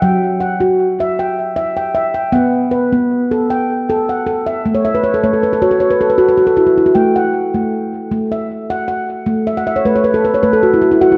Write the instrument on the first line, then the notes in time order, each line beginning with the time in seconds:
handpan
Already playing: F#5
0.02 F#3 G5
0.40 F#5
0.61 F#4
1.01 E5
1.20 G5
1.57 E5
1.77 G5
1.95 E5
2.15 G5
2.33 B3 F#5
2.72 B4
2.93 B3
3.31 A4
3.50 G5
3.89 A4
4.09 F#5
4.26 A4
4.46 E5
4.66 A3
4.75 C#5
4.85 E5
4.95 B4
5.03 C#5
5.14 A4
5.23 A3 C#5
5.33 A4
5.43 B4
5.53 A4
5.62 F#4 C#5
5.71 A4
5.80 C#5
5.90 B4
6.01 A4
6.10 B4
6.18 F#4 A4
6.29 B4
6.38 F#4
6.47 A4
6.57 E4 F#4
6.67 F#4
6.78 E4
6.86 F#4
6.95 A3 G5
7.16 F#5
7.54 A3
8.12 A3
8.32 E5
8.70 F#5
8.88 F#5
9.26 A3
9.47 E5
9.57 F#5
9.67 E5
9.76 C#5
9.85 A3 B4
9.96 C#5
10.04 B4
10.14 A4
10.25 B4
10.34 C#5
10.43 A3 B4
10.53 A4
10.63 F#4
10.74 E4
10.82 F#4
10.92 E4
11.01 F#4 F#5
11.12 E4